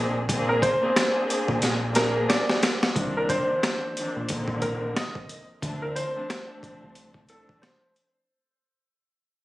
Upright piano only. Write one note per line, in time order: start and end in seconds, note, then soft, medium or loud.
0.49 0.61 A#4 medium
0.62 1.92 C5 medium
1.96 2.26 A#4 medium
2.29 2.59 D5 medium
3.17 3.29 A#4 medium
3.29 4.59 C5 medium
4.62 4.92 A#4 medium
4.96 5.26 D#5 medium
5.82 5.94 A#4 medium
5.96 7.25 C5 medium
7.30 7.59 A4 medium
7.62 7.92 C5 medium